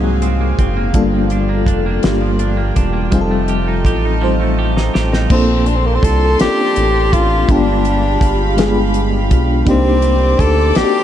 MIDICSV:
0, 0, Header, 1, 7, 480
1, 0, Start_track
1, 0, Key_signature, -2, "major"
1, 0, Tempo, 727273
1, 619, Time_signature, 6, 3, 24, 8
1, 7284, End_track
2, 0, Start_track
2, 0, Title_t, "String section"
2, 0, Program_c, 0, 48
2, 0, Note_on_c, 0, 66, 73
2, 0, Note_on_c, 0, 72, 63
2, 0, Note_on_c, 0, 77, 74
2, 0, Note_on_c, 0, 80, 60
2, 606, Note_off_c, 0, 80, 0
2, 608, Note_off_c, 0, 66, 0
2, 608, Note_off_c, 0, 72, 0
2, 623, Note_on_c, 0, 65, 75
2, 625, Note_on_c, 0, 74, 64
2, 625, Note_on_c, 0, 79, 69
2, 2038, Note_off_c, 0, 77, 0
2, 2048, Note_off_c, 0, 74, 0
2, 2057, Note_on_c, 0, 75, 73
2, 2060, Note_on_c, 0, 81, 78
2, 3475, Note_off_c, 0, 65, 0
2, 3475, Note_off_c, 0, 79, 0
2, 3484, Note_off_c, 0, 75, 0
2, 3485, Note_off_c, 0, 81, 0
2, 3499, Note_on_c, 0, 84, 96
2, 3500, Note_on_c, 0, 58, 79
2, 3501, Note_on_c, 0, 74, 73
2, 3501, Note_on_c, 0, 81, 67
2, 4925, Note_off_c, 0, 58, 0
2, 4925, Note_off_c, 0, 84, 0
2, 4926, Note_off_c, 0, 74, 0
2, 4926, Note_off_c, 0, 81, 0
2, 4934, Note_on_c, 0, 77, 78
2, 4937, Note_on_c, 0, 56, 77
2, 4937, Note_on_c, 0, 83, 89
2, 4938, Note_on_c, 0, 79, 76
2, 6362, Note_off_c, 0, 77, 0
2, 6364, Note_off_c, 0, 56, 0
2, 6364, Note_off_c, 0, 79, 0
2, 6364, Note_off_c, 0, 83, 0
2, 6381, Note_on_c, 0, 58, 82
2, 6381, Note_on_c, 0, 86, 90
2, 6383, Note_on_c, 0, 74, 82
2, 6383, Note_on_c, 0, 84, 69
2, 7284, Note_off_c, 0, 58, 0
2, 7284, Note_off_c, 0, 74, 0
2, 7284, Note_off_c, 0, 84, 0
2, 7284, Note_off_c, 0, 86, 0
2, 7284, End_track
3, 0, Start_track
3, 0, Title_t, "FM electric piano"
3, 0, Program_c, 1, 5
3, 0, Control_c, 1, 64, 127
3, 0, Note_on_c, 1, 54, 73
3, 0, Note_on_c, 1, 58, 73
3, 0, Note_on_c, 1, 60, 71
3, 0, Note_on_c, 1, 63, 72
3, 0, Note_on_c, 1, 68, 86
3, 544, Note_off_c, 1, 54, 0
3, 545, Note_off_c, 1, 58, 0
3, 548, Note_off_c, 1, 60, 0
3, 551, Note_off_c, 1, 63, 0
3, 554, Note_off_c, 1, 68, 0
3, 612, Note_on_c, 1, 55, 88
3, 617, Note_on_c, 1, 58, 84
3, 624, Note_on_c, 1, 62, 86
3, 627, Control_c, 1, 64, 0
3, 628, Note_on_c, 1, 65, 91
3, 633, Note_on_c, 1, 69, 94
3, 750, Control_c, 1, 64, 127
3, 1260, Note_off_c, 1, 55, 0
3, 1262, Note_off_c, 1, 58, 0
3, 1266, Note_off_c, 1, 62, 0
3, 1268, Note_off_c, 1, 65, 0
3, 1270, Note_off_c, 1, 69, 0
3, 1337, Note_on_c, 1, 55, 79
3, 1343, Note_on_c, 1, 58, 76
3, 1350, Note_on_c, 1, 62, 70
3, 1352, Note_on_c, 1, 65, 72
3, 1361, Note_on_c, 1, 67, 87
3, 1982, Note_off_c, 1, 55, 0
3, 1985, Note_off_c, 1, 58, 0
3, 1988, Note_off_c, 1, 62, 0
3, 1990, Note_off_c, 1, 65, 0
3, 1994, Note_off_c, 1, 67, 0
3, 2054, Note_on_c, 1, 55, 98
3, 2061, Note_on_c, 1, 60, 84
3, 2063, Note_on_c, 1, 63, 83
3, 2068, Control_c, 1, 64, 0
3, 2072, Note_on_c, 1, 65, 85
3, 2074, Note_on_c, 1, 68, 80
3, 2110, Note_off_c, 1, 68, 0
3, 2119, Note_on_c, 1, 69, 103
3, 2198, Control_c, 1, 64, 127
3, 2701, Note_off_c, 1, 55, 0
3, 2704, Note_off_c, 1, 60, 0
3, 2705, Note_off_c, 1, 63, 0
3, 2709, Note_off_c, 1, 65, 0
3, 2733, Note_off_c, 1, 69, 0
3, 2776, Note_on_c, 1, 55, 81
3, 2783, Note_on_c, 1, 60, 69
3, 2788, Note_on_c, 1, 63, 70
3, 2793, Note_on_c, 1, 65, 68
3, 2798, Note_on_c, 1, 72, 89
3, 3422, Note_off_c, 1, 55, 0
3, 3425, Note_off_c, 1, 60, 0
3, 3428, Note_off_c, 1, 63, 0
3, 3430, Note_off_c, 1, 65, 0
3, 3432, Note_off_c, 1, 72, 0
3, 3504, Note_on_c, 1, 58, 84
3, 3506, Control_c, 1, 64, 0
3, 3506, Note_on_c, 1, 60, 71
3, 3512, Note_on_c, 1, 62, 72
3, 3516, Note_on_c, 1, 65, 80
3, 3524, Note_on_c, 1, 69, 96
3, 3617, Control_c, 1, 64, 127
3, 4145, Note_off_c, 1, 58, 0
3, 4146, Note_off_c, 1, 60, 0
3, 4149, Note_off_c, 1, 62, 0
3, 4152, Note_off_c, 1, 65, 0
3, 4155, Note_off_c, 1, 69, 0
3, 4215, Note_on_c, 1, 58, 73
3, 4223, Note_on_c, 1, 60, 66
3, 4228, Note_on_c, 1, 61, 50
3, 4233, Note_on_c, 1, 65, 67
3, 4238, Note_on_c, 1, 69, 79
3, 4267, Note_off_c, 1, 61, 0
3, 4271, Note_on_c, 1, 62, 69
3, 4861, Note_off_c, 1, 58, 0
3, 4865, Note_off_c, 1, 60, 0
3, 4870, Note_off_c, 1, 65, 0
3, 4873, Note_off_c, 1, 69, 0
3, 4889, Note_off_c, 1, 62, 0
3, 4936, Note_on_c, 1, 56, 80
3, 4943, Note_on_c, 1, 59, 79
3, 4947, Control_c, 1, 64, 0
3, 4949, Note_on_c, 1, 62, 82
3, 4957, Note_on_c, 1, 65, 73
3, 4958, Note_on_c, 1, 67, 95
3, 5056, Control_c, 1, 64, 127
3, 5581, Note_off_c, 1, 56, 0
3, 5585, Note_off_c, 1, 59, 0
3, 5588, Note_off_c, 1, 62, 0
3, 5592, Note_off_c, 1, 65, 0
3, 5592, Note_off_c, 1, 67, 0
3, 5654, Note_on_c, 1, 56, 83
3, 5661, Note_on_c, 1, 59, 80
3, 5666, Note_on_c, 1, 62, 82
3, 5670, Note_on_c, 1, 65, 80
3, 5677, Note_on_c, 1, 68, 96
3, 6300, Note_off_c, 1, 56, 0
3, 6304, Note_off_c, 1, 59, 0
3, 6307, Note_off_c, 1, 62, 0
3, 6308, Note_off_c, 1, 65, 0
3, 6312, Note_off_c, 1, 68, 0
3, 6370, Note_on_c, 1, 58, 92
3, 6378, Note_on_c, 1, 60, 79
3, 6382, Note_on_c, 1, 62, 87
3, 6386, Note_on_c, 1, 63, 81
3, 6388, Control_c, 1, 64, 0
3, 6392, Note_on_c, 1, 67, 99
3, 6483, Control_c, 1, 64, 127
3, 7018, Note_off_c, 1, 58, 0
3, 7022, Note_off_c, 1, 60, 0
3, 7024, Note_off_c, 1, 62, 0
3, 7026, Note_off_c, 1, 63, 0
3, 7029, Note_off_c, 1, 67, 0
3, 7095, Note_on_c, 1, 58, 78
3, 7098, Note_on_c, 1, 60, 69
3, 7101, Note_on_c, 1, 62, 64
3, 7108, Note_on_c, 1, 63, 67
3, 7113, Note_on_c, 1, 66, 62
3, 7149, Note_off_c, 1, 66, 0
3, 7160, Note_on_c, 1, 67, 81
3, 7284, Note_off_c, 1, 58, 0
3, 7284, Note_off_c, 1, 60, 0
3, 7284, Note_off_c, 1, 62, 0
3, 7284, Note_off_c, 1, 63, 0
3, 7284, Note_off_c, 1, 67, 0
3, 7284, End_track
4, 0, Start_track
4, 0, Title_t, "Tenor saxophone"
4, 0, Program_c, 2, 66
4, 3508, Note_on_c, 2, 60, 90
4, 3748, Note_on_c, 2, 62, 77
4, 3758, Note_off_c, 2, 60, 0
4, 3807, Note_on_c, 2, 60, 84
4, 3817, Note_off_c, 2, 62, 0
4, 3869, Note_on_c, 2, 58, 85
4, 3879, Note_off_c, 2, 60, 0
4, 3928, Note_on_c, 2, 60, 76
4, 3938, Note_off_c, 2, 58, 0
4, 3988, Note_on_c, 2, 69, 102
4, 3998, Note_off_c, 2, 60, 0
4, 4224, Note_off_c, 2, 69, 0
4, 4233, Note_on_c, 2, 67, 118
4, 4708, Note_on_c, 2, 65, 101
4, 4718, Note_off_c, 2, 67, 0
4, 4957, Note_on_c, 2, 62, 85
4, 4967, Note_off_c, 2, 65, 0
4, 5668, Note_off_c, 2, 62, 0
4, 6402, Note_on_c, 2, 60, 105
4, 6867, Note_on_c, 2, 69, 101
4, 6877, Note_off_c, 2, 60, 0
4, 7108, Note_on_c, 2, 67, 122
4, 7118, Note_off_c, 2, 69, 0
4, 7284, Note_off_c, 2, 67, 0
4, 7284, End_track
5, 0, Start_track
5, 0, Title_t, "Clean electric guitar"
5, 0, Program_c, 3, 27
5, 0, Note_on_c, 3, 44, 71
5, 0, Note_on_c, 3, 58, 56
5, 0, Note_on_c, 3, 60, 58
5, 25, Note_on_c, 3, 54, 56
5, 138, Note_off_c, 3, 60, 0
5, 146, Note_on_c, 3, 60, 58
5, 267, Note_off_c, 3, 58, 0
5, 269, Note_on_c, 3, 58, 56
5, 380, Note_off_c, 3, 60, 0
5, 388, Note_on_c, 3, 60, 62
5, 504, Note_off_c, 3, 58, 0
5, 507, Note_on_c, 3, 58, 56
5, 620, Note_off_c, 3, 44, 0
5, 622, Note_on_c, 3, 43, 75
5, 670, Note_off_c, 3, 54, 0
5, 672, Note_off_c, 3, 60, 0
5, 750, Note_on_c, 3, 53, 55
5, 868, Note_on_c, 3, 62, 54
5, 981, Note_off_c, 3, 58, 0
5, 984, Note_on_c, 3, 58, 55
5, 1096, Note_off_c, 3, 62, 0
5, 1104, Note_on_c, 3, 62, 60
5, 1221, Note_off_c, 3, 58, 0
5, 1228, Note_on_c, 3, 58, 55
5, 1335, Note_off_c, 3, 43, 0
5, 1343, Note_on_c, 3, 43, 72
5, 1457, Note_off_c, 3, 53, 0
5, 1460, Note_on_c, 3, 53, 55
5, 1572, Note_off_c, 3, 62, 0
5, 1580, Note_on_c, 3, 62, 61
5, 1688, Note_off_c, 3, 58, 0
5, 1696, Note_on_c, 3, 58, 55
5, 1814, Note_off_c, 3, 62, 0
5, 1821, Note_on_c, 3, 62, 60
5, 1926, Note_off_c, 3, 58, 0
5, 1934, Note_on_c, 3, 58, 51
5, 2051, Note_off_c, 3, 53, 0
5, 2054, Note_on_c, 3, 53, 84
5, 2105, Note_off_c, 3, 58, 0
5, 2108, Note_off_c, 3, 62, 0
5, 2109, Note_off_c, 3, 43, 0
5, 2185, Note_on_c, 3, 57, 60
5, 2305, Note_on_c, 3, 67, 57
5, 2426, Note_on_c, 3, 63, 55
5, 2539, Note_off_c, 3, 67, 0
5, 2547, Note_on_c, 3, 67, 65
5, 2663, Note_off_c, 3, 63, 0
5, 2674, Note_on_c, 3, 63, 54
5, 2778, Note_off_c, 3, 53, 0
5, 2781, Note_on_c, 3, 53, 74
5, 2900, Note_off_c, 3, 57, 0
5, 2903, Note_on_c, 3, 57, 53
5, 3019, Note_off_c, 3, 67, 0
5, 3027, Note_on_c, 3, 67, 59
5, 3138, Note_off_c, 3, 63, 0
5, 3146, Note_on_c, 3, 63, 53
5, 3252, Note_off_c, 3, 67, 0
5, 3260, Note_on_c, 3, 67, 56
5, 3374, Note_off_c, 3, 63, 0
5, 3382, Note_on_c, 3, 63, 52
5, 3548, Note_off_c, 3, 67, 0
5, 3549, Note_off_c, 3, 63, 0
5, 3879, Note_off_c, 3, 53, 0
5, 3879, Note_off_c, 3, 57, 0
5, 7284, End_track
6, 0, Start_track
6, 0, Title_t, "Analog synth bass"
6, 0, Program_c, 4, 38
6, 0, Note_on_c, 4, 36, 84
6, 357, Note_off_c, 4, 36, 0
6, 392, Note_on_c, 4, 30, 79
6, 602, Note_off_c, 4, 30, 0
6, 628, Note_on_c, 4, 31, 92
6, 1103, Note_on_c, 4, 29, 90
6, 1112, Note_off_c, 4, 31, 0
6, 1317, Note_off_c, 4, 29, 0
6, 1351, Note_on_c, 4, 31, 91
6, 1799, Note_off_c, 4, 31, 0
6, 1830, Note_on_c, 4, 28, 86
6, 2041, Note_off_c, 4, 28, 0
6, 2065, Note_on_c, 4, 29, 107
6, 2545, Note_on_c, 4, 33, 93
6, 2554, Note_off_c, 4, 29, 0
6, 3235, Note_off_c, 4, 33, 0
6, 3274, Note_on_c, 4, 33, 94
6, 3483, Note_off_c, 4, 33, 0
6, 3505, Note_on_c, 4, 34, 99
6, 3955, Note_off_c, 4, 34, 0
6, 3985, Note_on_c, 4, 36, 98
6, 4198, Note_off_c, 4, 36, 0
6, 4234, Note_on_c, 4, 33, 51
6, 4278, Note_off_c, 4, 33, 0
6, 4469, Note_on_c, 4, 33, 79
6, 4918, Note_off_c, 4, 33, 0
6, 4948, Note_on_c, 4, 31, 107
6, 5397, Note_off_c, 4, 31, 0
6, 5425, Note_on_c, 4, 31, 100
6, 6150, Note_on_c, 4, 35, 95
6, 6160, Note_off_c, 4, 31, 0
6, 6361, Note_off_c, 4, 35, 0
6, 6385, Note_on_c, 4, 36, 109
6, 6836, Note_off_c, 4, 36, 0
6, 6864, Note_on_c, 4, 38, 94
6, 7078, Note_off_c, 4, 38, 0
6, 7108, Note_on_c, 4, 34, 48
6, 7154, Note_off_c, 4, 34, 0
6, 7284, End_track
7, 0, Start_track
7, 0, Title_t, "Drums"
7, 145, Note_on_c, 9, 42, 49
7, 211, Note_off_c, 9, 42, 0
7, 387, Note_on_c, 9, 36, 86
7, 388, Note_on_c, 9, 42, 70
7, 453, Note_off_c, 9, 36, 0
7, 454, Note_off_c, 9, 42, 0
7, 620, Note_on_c, 9, 42, 67
7, 622, Note_on_c, 9, 36, 101
7, 686, Note_off_c, 9, 42, 0
7, 688, Note_off_c, 9, 36, 0
7, 858, Note_on_c, 9, 42, 41
7, 924, Note_off_c, 9, 42, 0
7, 1099, Note_on_c, 9, 36, 79
7, 1107, Note_on_c, 9, 42, 64
7, 1165, Note_off_c, 9, 36, 0
7, 1173, Note_off_c, 9, 42, 0
7, 1339, Note_on_c, 9, 42, 70
7, 1347, Note_on_c, 9, 38, 109
7, 1405, Note_off_c, 9, 42, 0
7, 1413, Note_off_c, 9, 38, 0
7, 1578, Note_on_c, 9, 42, 48
7, 1644, Note_off_c, 9, 42, 0
7, 1822, Note_on_c, 9, 42, 68
7, 1825, Note_on_c, 9, 36, 81
7, 1888, Note_off_c, 9, 42, 0
7, 1891, Note_off_c, 9, 36, 0
7, 2058, Note_on_c, 9, 42, 67
7, 2060, Note_on_c, 9, 36, 106
7, 2124, Note_off_c, 9, 42, 0
7, 2126, Note_off_c, 9, 36, 0
7, 2297, Note_on_c, 9, 42, 43
7, 2363, Note_off_c, 9, 42, 0
7, 2539, Note_on_c, 9, 36, 80
7, 2547, Note_on_c, 9, 42, 62
7, 2605, Note_off_c, 9, 36, 0
7, 2613, Note_off_c, 9, 42, 0
7, 3150, Note_on_c, 9, 38, 66
7, 3216, Note_off_c, 9, 38, 0
7, 3269, Note_on_c, 9, 38, 87
7, 3335, Note_off_c, 9, 38, 0
7, 3388, Note_on_c, 9, 38, 78
7, 3454, Note_off_c, 9, 38, 0
7, 3498, Note_on_c, 9, 49, 98
7, 3499, Note_on_c, 9, 36, 119
7, 3564, Note_off_c, 9, 49, 0
7, 3565, Note_off_c, 9, 36, 0
7, 3737, Note_on_c, 9, 42, 48
7, 3803, Note_off_c, 9, 42, 0
7, 3978, Note_on_c, 9, 36, 89
7, 3989, Note_on_c, 9, 42, 69
7, 4044, Note_off_c, 9, 36, 0
7, 4055, Note_off_c, 9, 42, 0
7, 4221, Note_on_c, 9, 42, 77
7, 4229, Note_on_c, 9, 38, 117
7, 4287, Note_off_c, 9, 42, 0
7, 4295, Note_off_c, 9, 38, 0
7, 4462, Note_on_c, 9, 42, 52
7, 4528, Note_off_c, 9, 42, 0
7, 4706, Note_on_c, 9, 36, 96
7, 4707, Note_on_c, 9, 42, 67
7, 4772, Note_off_c, 9, 36, 0
7, 4773, Note_off_c, 9, 42, 0
7, 4941, Note_on_c, 9, 36, 109
7, 4941, Note_on_c, 9, 42, 73
7, 5007, Note_off_c, 9, 36, 0
7, 5007, Note_off_c, 9, 42, 0
7, 5180, Note_on_c, 9, 42, 49
7, 5246, Note_off_c, 9, 42, 0
7, 5419, Note_on_c, 9, 36, 95
7, 5427, Note_on_c, 9, 42, 68
7, 5485, Note_off_c, 9, 36, 0
7, 5493, Note_off_c, 9, 42, 0
7, 5662, Note_on_c, 9, 42, 77
7, 5670, Note_on_c, 9, 38, 117
7, 5728, Note_off_c, 9, 42, 0
7, 5736, Note_off_c, 9, 38, 0
7, 5900, Note_on_c, 9, 42, 52
7, 5966, Note_off_c, 9, 42, 0
7, 6144, Note_on_c, 9, 42, 77
7, 6145, Note_on_c, 9, 36, 101
7, 6210, Note_off_c, 9, 42, 0
7, 6211, Note_off_c, 9, 36, 0
7, 6379, Note_on_c, 9, 42, 73
7, 6380, Note_on_c, 9, 36, 112
7, 6445, Note_off_c, 9, 42, 0
7, 6446, Note_off_c, 9, 36, 0
7, 6615, Note_on_c, 9, 42, 50
7, 6681, Note_off_c, 9, 42, 0
7, 6858, Note_on_c, 9, 36, 94
7, 6866, Note_on_c, 9, 42, 70
7, 6924, Note_off_c, 9, 36, 0
7, 6932, Note_off_c, 9, 42, 0
7, 7096, Note_on_c, 9, 42, 71
7, 7104, Note_on_c, 9, 38, 125
7, 7162, Note_off_c, 9, 42, 0
7, 7170, Note_off_c, 9, 38, 0
7, 7284, End_track
0, 0, End_of_file